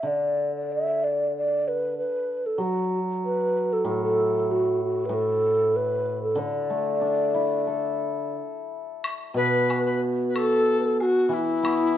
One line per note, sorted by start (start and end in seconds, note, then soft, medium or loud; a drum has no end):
0.03 1.96 D3 soft
0.07 0.55 D5 medium
0.56 0.74 D5 medium
0.72 1.06 E5 medium
1.04 1.35 D5 medium
1.37 1.69 D5 medium
1.68 1.98 B4 medium
1.98 2.48 B4 medium
2.46 2.64 A4 medium
2.58 4.48 F#3 soft
2.62 2.99 F#4 medium
3.25 3.74 B4 medium
3.73 3.87 A4 medium
3.84 5.08 A2 medium
3.84 4.02 A4 medium
4.04 4.53 A4 medium
4.51 4.82 F#4 medium
4.84 5.07 F#4 medium
5.06 6.37 A2 soft
5.06 5.16 B4 medium
5.14 5.78 A4 medium
5.76 6.23 B4 medium
6.23 6.41 A4 medium
6.35 8.35 D3 medium
6.40 8.37 D5 medium
6.70 8.01 A3 soft
7.01 8.35 D4 soft
7.34 8.70 E4 soft
7.67 9.03 A4 soft
9.04 high woodblock medium
9.34 11.31 B2 medium
9.34 9.82 B4 medium
9.34 9.98 B4 medium
9.70 high woodblock soft
9.70 low woodblock soft
9.85 10.01 B4 medium
10.28 10.37 B4 soft
10.36 11.00 A4 medium
10.36 10.77 A4 medium
10.36 high woodblock soft
10.80 10.88 B4 medium
10.86 11.03 A4 medium
11.00 11.35 F#4 medium
11.00 11.36 F#4 medium
11.00 low woodblock soft
11.29 11.98 E3 medium
11.33 11.98 E4 medium
11.63 11.98 B3 soft
11.63 high woodblock soft